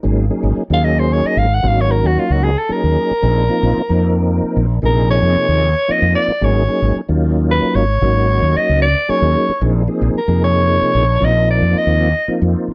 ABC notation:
X:1
M:6/8
L:1/16
Q:3/8=75
K:Abmix
V:1 name="Soprano saxophone"
z4 z f e c d e f g | f d B G F G A =A B4- | B8 z4 | B2 d6 e2 =d2 |
d4 z4 _c2 d2- | d4 e2 =d2 _d4 | z4 B2 d6 | e2 =d2 e4 z4 |]
V:2 name="Tonewheel organ"
[G,B,DEA]2 [G,B,DEA]2 z [G,B,DEA]6 z | [G,B,DEG]6- [G,B,DEG] z [G,B,DEA]3 z | [F,B,CEA]2 [F,B,CEF]2 z [F,B,CEB]6 z | [C,F,B,EA]6- [C,F,B,EA] z [F,B,CEF]3 z |
[G,B,DEA]2 [G,B,DEA]2 z [G,B,DEF]6 z | [G,B,DEG]6- [G,B,DEG] z [G,B,DEA]3 z | [F,B,CEA]2 [F,B,CEA]2 z [C,F,B,EA]6 z | [F,B,CEF]6- [F,B,CEF] z [F,B,CEF]3 z |]
V:3 name="Fretless electric bass" clef=bass
A,,,2 z A,,, z E,,4 z A,,,2 | A,,,3 E,, z D,,2 z2 E,, z2 | B,,,2 z B,,, z F,,4 z B,,,2 | B,,,3 F,, z E,,2 z2 F,, z2 |
A,,,2 z A,,, z E,,4 z A,,,2 | A,,,3 E,, z D,,2 z2 E,, z2 | B,,,2 z B,,, z F,,4 z B,,,2 | B,,,3 F,, z E,,2 z2 F,, z2 |]